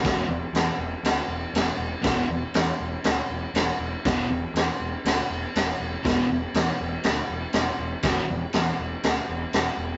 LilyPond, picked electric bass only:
\new Staff \with { instrumentName = "Picked electric bass" } { \clef bass \time 4/4 \key c \lydian \tempo 4 = 120 e,,8 e,,8 e,8 e,,8 d,8 e,,8 e,,8 e,,8 | e,,8 e,,8 e,8 e,,8 d,8 e,,8 e,,8 e,,8 | e,,8 e,,8 e,8 e,,8 d,8 e,,8 e,,8 e,,8 | e,,8 e,,8 e,8 e,,8 d,8 e,,8 e,,8 e,,8 |
e,,8 e,,8 e,8 e,,8 d,8 e,,8 e,,8 e,,8 | }